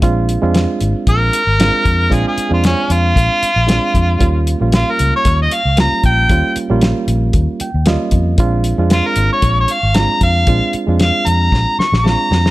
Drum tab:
HH |x-x-x-x-x-x-x-x-|x-x-x-x-x-x-x-x-|x-x-x-x-x-x-x-x-|x-x-x-x-x-x-x-x-|
SD |----o-------o---|----o-------o---|----o-------o---|----o-------o---|
BD |o-------o-----o-|o-------o-----o-|o-------o-----o-|o-------o-----o-|

HH |x-x-x-x-x-x-x-x-|x-x-x-x---------|
SD |----o-------o---|----o---o-ooo-oo|
BD |o-------o-----o-|o-------o-------|